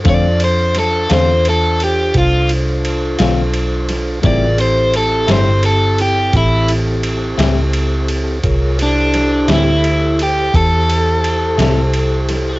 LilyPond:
<<
  \new Staff \with { instrumentName = "Overdriven electric guitar" } { \time 12/8 \key a \minor \tempo 4. = 57 d''8 c''8 a'8 c''8 a'8 g'8 f'8 r2 r8 | d''8 c''8 a'8 c''8 a'8 g'8 e'8 r2 r8 | r8 d'4 e'4 g'8 a'2. | }
  \new Staff \with { instrumentName = "Tonewheel organ" } { \time 12/8 \key a \minor <d' f' a' c''>1. | <cis f' gis' bes'>8 <c' e' g' a'>1~ <c' e' g' a'>4. | <f' gis' bes' cis''>8 <e' g' a' c''>1~ <e' g' a' c''>4. | }
  \new Staff \with { instrumentName = "Clean electric guitar" } { \time 12/8 \key a \minor <d a c' f'>8 r4 <d a c' f'>8 r2 r8 <d a c' f'>8 r4 | <a, g c' e'>8 r4 <a, g c' e'>8 r2 r8 <a, g c' e'>8 r4 | r4. <a, g c' e'>8 r2 r8 <a, g c' e'>8 r4 | }
  \new Staff \with { instrumentName = "Fingered electric bass" } { \clef bass \time 12/8 \key a \minor f,4. e,4. c,4. b,,4. | a,,4. g,,4. a,,4. cis,4. | c,4. d,4. e,4. c,4. | }
  \new DrumStaff \with { instrumentName = "Drums" } \drummode { \time 12/8 <bd cymr>8 cymr8 <cymr sn>8 <cymr sn>8 cymr8 cymr8 <bd cymr>8 cymr8 cymr8 <cymr sn>8 cymr8 <cymr sn>8 | <bd cymr>8 cymr8 cymr8 <cymr sn>8 cymr8 cymr8 <bd cymr>8 cymr8 cymr8 <cymr sn>8 cymr8 cymr8 | <bd cymr>8 cymr8 <cymr sn>8 <cymr sn>8 cymr8 cymr8 <bd cymr>8 cymr8 cymr8 <cymr sn>8 cymr8 <cymr sn>8 | }
>>